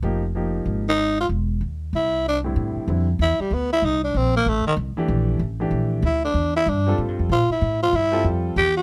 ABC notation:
X:1
M:4/4
L:1/8
Q:"Swing" 1/4=190
K:Cphr
V:1 name="Tenor saxophone"
z4 z E2 F | z4 =E2 =D z | [K:Am] z4 E G, B, E | ^D =D C _B, A, ^D, z2 |
z6 E D- | D E D2 z2 F E- | E F E2 z2 G ^F |]
V:2 name="Grand piano"
[F,B,EG] z [F,B,EG]3 z3 | z6 z [=A,,=D,G,C=E]- | [K:Am] [A,,D,G,CE]2 [D,G,CE] z4 z | z6 z [E,A,DG]- |
[E,A,DG]2 z [E,A,DG]3 z2 | z3 [G,CFA]3 z2 | z3 [G,CFA]3 z2 |]
V:3 name="Upright bass" clef=bass
F,,,4 A,,,4 | =E,,,2 _E,,2 C,,4 | [K:Am] A,, z F,,2 E,, z D,,2 | C,,2 _B,,,2 A,,, z C,, z |
_B,,,2 A,,,2 B,,,2 D,,2 | E,,2 G,,2 (3A,, G,, F,, _B,, z | A,,2 G,,2 F,,2 E,,2 |]